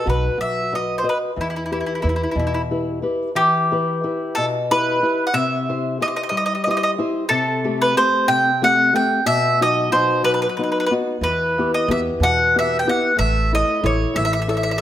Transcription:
Already playing: D#5
0.05 B1 F#4 B4 F#5
0.38 B1 F#3 E5
0.72 F#4 B4 D#5
0.98 C5
1.03 F#4 B4 D#5
1.09 B4
1.36 E2 E3
1.41 E4
1.50 E4
1.56 E4
1.66 E4
1.72 E4 G4 B4
1.81 E4
1.86 E4
1.95 E4
2.02 E2 E4 G4 B4
2.09 E4
2.16 E4
2.23 E4
2.31 B2 E4
2.36 E2 E4
2.47 E4
2.54 E4
2.71 E4 G4 B4
3.02 E4 G4 B4
3.35 E3 G4
3.72 E4 G4 B4
4.04 E4 G4 B4
4.35 B2 A4
4.71 E4 G4 B4
5.03 E4 G4 B4
5.27 F#5
5.33 C3 E5
5.69 E4 G4 C5
6.00 E4 G4 C5 D#5
6.08 D#5
6.16 D#5
6.23 D#5
6.29 G3 D#5
6.37 D#5
6.46 D#5
6.55 D#5
6.64 E4 G4 D#5
6.68 C5 D#5
6.77 D#5
6.83 D#5
6.98 E4 G4 C5
7.29 C3 A4
7.64 A3 C4 G4
7.82 B4
7.96 A3 C4 G4 C5
8.28 C3 G5
8.62 A3 C4 G4 F#5
8.94 A3 C4 G4 G5
9.26 B2 E5
9.61 F#3 D#4 F#4 D#5
9.92 B2 D#4 F#4 C5
10.23 F#3 B4
10.34 B4
10.42 B4
10.49 B4
10.57 B3 D#4 F#4 B4
10.63 B4
10.72 B4
10.80 B4
10.86 B4
10.91 B3 D#4 F#4
11.21 E2 E3 B4
11.58 B3 E4 G4
11.74 D#5
11.88 E2 B3 E4 G4 E5
12.20 E2 B2 F#5
12.55 B3 E4 G4 E5
12.79 G5
12.87 B3 E4 G4 F#5
13.17 A1 A3 E5
13.53 E4 A4 C#5 D#5
13.83 A1 E4 A4 C#5
14.14 A1 E3 E5
14.25 E5
14.33 E5
14.42 E5
14.48 E4 A4 C#5 E5
14.57 E5
14.63 E5
14.71 E5

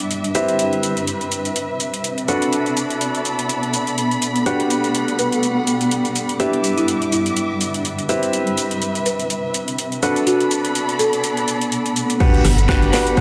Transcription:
Already playing: G3 D4 E4 G4 B4 E5 D6
0.00 closed hi-hat, shaker
0.11 closed hi-hat, shaker
0.24 closed hi-hat, shaker
0.35 C4 E4 G4 B4 E5, closed hi-hat, shaker
0.48 closed hi-hat, shaker
0.59 closed hi-hat, shaker
0.73 closed hi-hat
0.83 closed hi-hat, shaker
0.97 closed hi-hat, shaker
1.07 closed hi-hat, shaker
1.21 closed hi-hat, shaker
1.32 closed hi-hat, shaker
1.45 closed hi-hat, shaker
1.56 closed hi-hat, shaker
1.80 closed hi-hat, shaker
1.94 closed hi-hat, shaker
2.04 closed hi-hat, shaker
2.18 closed hi-hat, shaker
2.28 B3 D4 F#4 A4 B4 D5 F#5 B5, closed hi-hat, shaker
2.42 closed hi-hat, shaker
2.53 closed hi-hat, shaker
2.66 closed hi-hat, shaker
2.71 A4
2.77 closed hi-hat, shaker
2.90 closed hi-hat, shaker
3.01 closed hi-hat, shaker
3.15 closed hi-hat, shaker
3.25 D5, closed hi-hat, shaker
3.39 closed hi-hat, shaker
3.49 closed hi-hat, shaker
3.63 closed hi-hat
3.74 closed hi-hat, shaker
3.87 closed hi-hat, shaker
3.98 closed hi-hat, shaker
4.11 closed hi-hat, shaker
4.22 closed hi-hat, shaker
4.36 closed hi-hat, shaker
4.46 G3 D4 F#4 G4 B4 F#5, closed hi-hat, shaker
4.60 closed hi-hat
4.70 closed hi-hat, shaker
4.84 closed hi-hat, shaker
4.95 closed hi-hat, shaker
5.08 closed hi-hat, shaker
5.16 G3 B4, closed hi-hat, shaker
5.32 F#5, closed hi-hat, shaker
5.43 closed hi-hat, shaker
5.67 closed hi-hat, shaker
5.81 closed hi-hat, shaker
5.91 closed hi-hat, shaker
6.05 closed hi-hat, shaker
6.16 closed hi-hat, shaker
6.29 closed hi-hat, shaker
6.40 D4 E4 G4 B4 E5 D6, closed hi-hat, shaker
6.53 closed hi-hat
6.64 closed hi-hat, shaker
6.78 E4, closed hi-hat, shaker
6.88 closed hi-hat, shaker
7.02 closed hi-hat, shaker
7.12 E4, closed hi-hat, shaker
7.16 E5
7.26 closed hi-hat, shaker
7.37 closed hi-hat, shaker
7.61 closed hi-hat, shaker
7.74 closed hi-hat, shaker
7.85 closed hi-hat, shaker
7.99 closed hi-hat, shaker
8.09 C4 E4 G4 B4 E5, closed hi-hat, shaker
8.23 closed hi-hat, shaker
8.33 closed hi-hat, shaker
8.47 closed hi-hat
8.57 closed hi-hat, shaker
8.71 closed hi-hat, shaker
8.82 closed hi-hat, shaker
8.95 closed hi-hat, shaker
9.06 B4, closed hi-hat, shaker
9.20 closed hi-hat, shaker
9.30 closed hi-hat, shaker
9.54 closed hi-hat, shaker
9.68 closed hi-hat, shaker
9.78 closed hi-hat, shaker
9.92 closed hi-hat, shaker
10.03 B3 D4 F#4 A4 B4 D5 F#5 B5, closed hi-hat, shaker
10.16 closed hi-hat, shaker
10.27 F#4 A4, closed hi-hat, shaker
10.40 closed hi-hat, shaker
10.51 closed hi-hat, shaker
10.65 closed hi-hat, shaker
10.75 closed hi-hat, shaker
10.89 closed hi-hat, shaker
10.99 A4 D5, closed hi-hat, shaker
11.13 closed hi-hat, shaker
11.24 closed hi-hat, shaker
11.37 closed hi-hat, shaker
11.48 closed hi-hat, shaker
11.61 closed hi-hat, shaker
11.72 closed hi-hat, shaker
11.86 closed hi-hat, shaker
11.96 closed hi-hat, shaker
12.10 closed hi-hat, shaker
12.20 D4 F#4 G4 B4 F#5 B5, kick, closed hi-hat, crash, impact, shaker
12.34 closed hi-hat
12.43 G1 B4, cross-stick, open hi-hat, shaker
12.58 closed hi-hat, shaker
12.69 D4 F#4 G4 B4 F#5, kick, snare, closed hi-hat, shaker
12.82 G1, closed hi-hat, shaker
12.93 D4 F#4 G4 B4 F#5, snare, open hi-hat, shaker
13.07 closed hi-hat, shaker
13.17 D4 F#4 G4 B4 F#5, kick, closed hi-hat, shaker

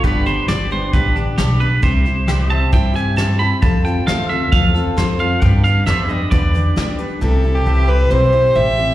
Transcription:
0.03 G1 G2 D3 G3 B3 D4 G4 B4 D5, kick, closed hi-hat
0.26 G3 B3 D4 G4 C5, closed hi-hat
0.48 G1 G3 B3 D4 G4 D5, snare, closed hi-hat
0.71 G3 B3 D4 G4 C5
0.93 A1 G2 D3 G3 B3 D4 G4 B4, kick, closed hi-hat
1.16 G3 B3 D4 G4, closed hi-hat
1.38 B1 G3 B3 D4 G4, snare, closed hi-hat
1.60 G3 B3 D4 G4 B4
1.82 C2 C3 G3 C4 E4 G4 C5, kick, closed hi-hat
2.05 C4 E4 G4, closed hi-hat
2.27 G3 C4 E4 G4 B4 D5, snare, closed hi-hat
2.49 C4 E4 G4 C5 A5
2.55 E5
2.72 G2 C3 G3 C4 E4 G4 G5, kick, closed hi-hat
2.94 C4 E4 G4 G#5, closed hi-hat
3.16 G3 C4 E4 G4 A5, snare, closed hi-hat
3.39 C4 E4 G4 B5
3.62 F2 F3 C4 F4 A4 A5, kick, closed hi-hat
3.85 C4 F4 A4 G5, closed hi-hat
4.07 D2 F3 C4 F4 A4 C5 E5 F5, snare, closed hi-hat
4.29 C4 F4 A4 E5 F5
4.52 E2 F3 C4 F4 A4 F5, kick, closed hi-hat
4.74 C4 F4 A4, closed hi-hat
4.97 F2 F3 C4 F4 A4 C5, snare, closed hi-hat
5.19 C4 F4 A4 F5
5.42 G2 D3 G3 B3 D4 B4 G5, kick, closed hi-hat
5.64 G3 B3 D4 B4 F5, closed hi-hat
5.86 F2 G3 B3 D4 A4 B4 C5 D5 E5, snare, closed hi-hat
6.09 G3 B3 D4 B4 D#5
6.13 G4
6.31 E2 G2 D3 G3 B3 D4 B4 D5, kick, closed hi-hat
6.53 G3 B3 D4 B4, closed hi-hat
6.76 D2 G3 B3 D4 B4, snare, closed hi-hat
6.99 G3 B3 D4 B4
7.21 C2 C3 G3 C4 E4 G4 A4
7.44 C4 E4 G4
7.55 G4
7.66 C2 G3 C4 E4 G4 B4 E5
7.88 C4 E4 G4 B4 C5
8.10 B1 C3 G3 C4 E4 G4 C5
8.33 C4 E4 G4
8.55 A1 G3 C4 E4 G4 E5
8.78 C4 E4 G4

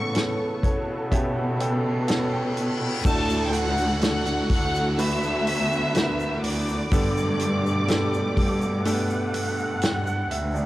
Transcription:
Already playing: A2 C#3 E3 B3 C#4 A4 C#6
0.13 B3 C#4 A4, snare, closed hi-hat
0.63 B2 C#5, kick, closed hi-hat
1.11 B3 C#4 G4 E5, kick, closed hi-hat, reverse cymbal
1.35 F#5
1.60 B3 C#4 A4 G5, closed hi-hat
2.08 B3 C#4 A4 A5, snare, closed hi-hat
2.33 G5
2.57 closed hi-hat
3.05 D2 A2 D3 A3 D4 F#4 A4 A5, kick, crash, downlifter, shaker
3.30 shaker
3.47 G5
3.53 F#5 F#6, hi-hat pedal, open hi-hat, shaker
3.78 open hi-hat, shaker
4.01 A3 D4 F#4 A4 F#5 F#6, snare, hi-hat pedal, open hi-hat, shaker
4.25 hi-hat pedal, shaker
4.49 D2 F#5 F#6, kick, hi-hat pedal, open hi-hat
4.75 shaker
4.98 A3 B3 D4 F#4 B4 E5 E6, hi-hat pedal, open hi-hat, shaker
5.23 shaker
5.47 hi-hat pedal, open hi-hat, shaker
5.72 shaker
5.94 A3 D4 F#4 A#4, snare, hi-hat pedal, open hi-hat, shaker
6.02 B4
6.20 shaker
6.43 D2 D5 D6, hi-hat pedal, open hi-hat
6.69 shaker
6.91 G2 B2 D3 A3 B3 D4 G4 A4, kick, hi-hat pedal, open hi-hat, shaker
7.17 shaker
7.39 hi-hat pedal, open hi-hat, shaker
7.66 shaker
7.88 B3 D4 G4 A4, snare, hi-hat pedal, open hi-hat, shaker
8.14 shaker
8.37 G2, kick, hi-hat pedal, open hi-hat
8.62 shaker
8.84 A3 D4 G4 A4 F#5, hi-hat pedal, open hi-hat, shaker
8.92 B3
9.10 shaker
9.34 G2, hi-hat pedal, open hi-hat, shaker
9.59 shaker
9.82 G5, snare, hi-hat pedal, open hi-hat, shaker
10.07 F#5, shaker
10.30 D2 E5, hi-hat pedal, open hi-hat
10.54 D5, shaker

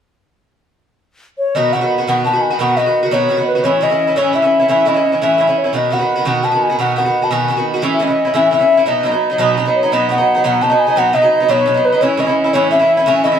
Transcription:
1.38 C#5
1.55 B2 D#3 B3 F#4 D#5
1.73 B2 D#3 B3 F#4 F#5
1.81 D#3 B3 F#4
1.98 D#3 B3 F#4
2.07 B2 D#3 B3 F#4 F#5
2.24 B2 D#3 B3 F#4 A5
2.33 D#3 B3 F#4
2.42 G#5
2.50 D#3 B3 F#4
2.59 B2 D#3 B3 F#4 F#5
2.77 B2 D#3 B3 F#4 D#5
2.86 D#3 B3 F#4
3.03 D#3 B3 F#4
3.11 B2 D#3 B3 F#4 C#5
3.29 B2 D#3 B3 F#4
3.37 D#3 B3 F#4
3.48 B4
3.55 D#3 B3 F#4
3.64 A2 E3 C#4 E4 C#5
3.81 A2 E3 C#4 E4 D#5
3.90 E3 C#4 E4
4.07 E3 C#4 E4
4.16 A2 E3 C#4 E4 C#5
4.33 A2 E3 C#4 E4 E5
4.42 E3 C#4 E4
4.59 E3 C#4 E4
4.69 A2 E3 C#4 E4 E5
4.85 A2 E3 C#4 E4 D#5
4.94 E3 C#4 E4
5.12 E3 C#4 E4
5.22 A2 E3 C#4 E4 E5
5.38 A2 E3 C#4 E4
5.47 E3 C#4 E4
5.58 C#5
5.64 E3 C#4 E4
5.73 B2 D#3 B3 F#4 D#5
5.91 B2 D#3 B3 F#4 F#5
5.99 D#3 B3 F#4
6.16 D#3 B3 F#4
6.25 B2 D#3 B3 F#4 F#5
6.43 B2 D#3 B3 F#4 A5
6.51 D#3 B3 F#4
6.62 G#5
6.69 D#3 B3 F#4
6.79 B2 D#3 B3 F#4 F#5
6.96 B2 D#3 B3 F#4 F#5
7.05 D#3 B3 F#4
7.22 D#3 B3 F#4 A5
7.31 B2 D#3 B3 F#4 G#5
7.48 B2 D#3 B3 F#4
7.57 D#3 B3 F#4
7.74 D#3 B3 F#4
7.82 A2 E3 C#4 E4
7.93 E5
7.99 A2 E3 C#4 E4 D#5
8.07 E3 C#4 E4
8.25 E3 C#4 E4
8.34 A2 E3 C#4 E4 E5
8.51 A2 E3 C#4 E4 E5
8.59 E3 C#4 E4
8.77 E3 C#4 E4
8.86 B2 F#3 B3 D#4 D#5
9.03 B2 F#3 B3 D#4
9.12 F#3 B3 D#4
9.30 F#3 B3 D#4
9.38 B2 F#3 B3 D#4
9.57 B2 F#3 B3 D#4
9.66 F#3 B3 D#4
9.75 C#5
9.83 F#3 B3 D#4
9.92 B2 F#3 B3 D#4 D#5
10.09 B2 F#3 B3 D#4 F#5
10.18 F#3 B3 D#4
10.35 F#3 B3 D#4
10.44 B2 F#3 B3 D#4 F#5
10.61 B2 F#3 B3 D#4 A5
10.70 F#3 B3 D#4
10.80 G#5
10.87 F#3 B3 D#4
10.96 B2 F#3 B3 D#4 F#5
11.13 B2 F#3 B3 D#4 D#5
11.22 F#3 B3 D#4
11.40 F#3 B3 D#4
11.49 B2 F#3 B3 D#4 C#5
11.66 B2 F#3 B3 D#4
11.74 F#3 B3 D#4
11.85 B4
11.92 F#3 B3 D#4
12.01 A2 E3 C#4 E4 C#5
12.17 A2 E3 C#4 E4 D#5
12.26 E3 C#4 E4
12.44 E3 C#4 E4
12.53 A2 E3 C#4 E4 C#5
12.71 A2 E3 C#4 E4 E5
12.79 E3 C#4 E4
12.97 E3 C#4 E4
13.06 A2 E3 C#4 E4 E5
13.24 A2 E3 C#4 E4 D#5
13.32 E3 C#4 E4

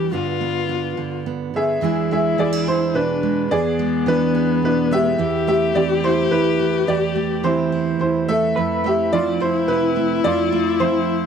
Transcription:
Already playing: E2 G3 D4 G4
0.12 G2 D3 B3 D4 F4
0.41 B3
0.69 D4
0.97 D3
1.26 B3
1.54 D3 G#4 E5
1.81 E2 E3 G#3 D4 E4 G#4
2.11 G#3 G#4 E5
2.38 E3 B3 G#4 D5
2.53 D4
2.67 E4 G#4 C5
2.94 B2 D4 B4
3.23 G#3
3.51 E2 B3 G#4 D5
3.79 G#3
4.06 E3 D4 B4
4.35 G#4
4.62 B2 D4 B4
4.91 G#3 G4 E5
5.18 E2 E4 G4
5.47 A3 G4 E5
5.75 E3 C4 G4 D5
6.04 E4 C5
6.31 E2 E4 B4
6.59 A3
6.87 E2 E4 G4 D5
7.16 A3
7.43 E3 C4 E4 C5
7.72 E4
8.00 E2 E4 C5
8.28 A3 A4 E5
8.56 F2 E4 B4
8.84 A3 G4 E5
9.13 F3 C4 F4 D5
9.40 E4 C5
9.68 C3 E4 B4
9.96 A3
10.24 F2 F4 D5
10.52 A3
10.80 F3 C4 E4 C5

